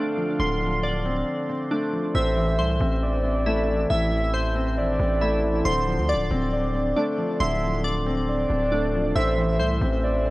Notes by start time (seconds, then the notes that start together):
Already playing: D3 F3 A3 C4 D4 C5 D5 F5 C6
0.17 F3
0.39 D1 D3 C6
0.61 F3
0.83 D5
1.05 C4
1.49 C4
1.71 A3 D4
1.93 F3
2.14 A1 A2 C5 E5
2.37 E3
2.59 C2 C5
2.80 A1 C4
3.03 D5
3.24 C4
3.46 A3 E4
3.68 E3
3.90 A1 A2 E5
4.12 E3
4.34 C5
4.56 C4
4.77 G#1 D5
4.99 A1 C4
5.21 A3 E4
5.44 E3
5.65 D1 D3 C5 C6
5.87 F3
5.98 D2
6.09 D5
6.14 D1
6.31 D1 C4
6.53 D5
6.75 C4
6.96 A3 D4
7.18 F3
7.40 D1 D3 E5 C6
7.62 F3
7.84 D5
8.06 C4
8.28 D5
8.50 D1 C4
8.72 A3 D4
8.93 F3
9.15 A1 A2 A3 A4 C5 E5
9.38 E3
9.59 C2 C5
9.81 A1 C4
10.03 D5
10.25 C4